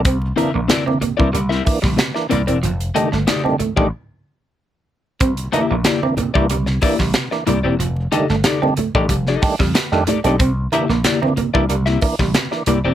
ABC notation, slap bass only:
X:1
M:4/4
L:1/16
Q:1/4=93
K:Cmix
V:1 name="Slap bass" clef=bass
C,,2 z B,,, z3 C,, C,,2 z B,,, z2 C,, E,,, | F,,,2 z G,,, z3 A,,, z8 | C,,2 z B,,, z3 C,, C,,2 z B,,, z2 C,, E,,, | F,,,2 z G,,, z3 A,,, F,,,2 z F,, z F,, z =B,,, |
C,,2 z B,,, z3 C,, C,,2 z B,,, z2 C,, E,,, |]